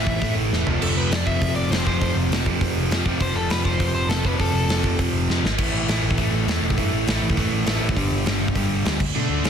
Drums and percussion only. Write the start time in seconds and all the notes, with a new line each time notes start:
0.07 kick
0.21 kick, open hi-hat
0.53 snare
0.67 floor tom
0.82 splash, crash
1.12 snare, open hi-hat
1.27 kick
1.42 kick, open hi-hat
1.72 snare, open hi-hat
1.87 kick
2.02 kick, open hi-hat
2.32 snare, open hi-hat
2.46 kick
2.61 kick, open hi-hat
2.91 snare, open hi-hat
3.06 kick
3.20 kick, open hi-hat
3.50 snare, open hi-hat
3.65 kick
3.80 kick, open hi-hat
4.10 snare, open hi-hat
4.25 kick
4.40 kick, open hi-hat
4.69 snare, open hi-hat
4.84 kick
4.99 kick, open hi-hat
5.30 snare
5.45 snare
5.58 kick, crash
5.88 snare, open hi-hat
6.11 kick
6.18 kick, open hi-hat
6.48 snare, open hi-hat
6.70 kick
6.78 kick, open hi-hat
7.07 snare, open hi-hat
7.30 kick
7.37 kick, open hi-hat
7.66 snare, open hi-hat
7.89 kick
7.97 kick, open hi-hat
8.26 snare, open hi-hat
8.48 kick
8.55 kick, open hi-hat
8.85 snare, open hi-hat
9.00 kick, crash
9.44 snare, open hi-hat